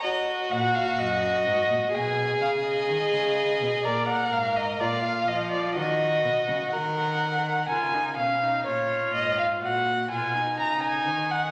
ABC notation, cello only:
X:1
M:4/4
L:1/16
Q:1/4=63
K:Ebm
V:1 name="Cello" clef=bass
z2 B,,2 G,,2 A,, B,, C,2 D,2 E, D,2 C, | B,,2 A,,2 B,,2 F,2 E,2 C, D, E,4 | D,2 C,2 B,,2 A,,2 B,,2 C,2 D,2 E,2 |]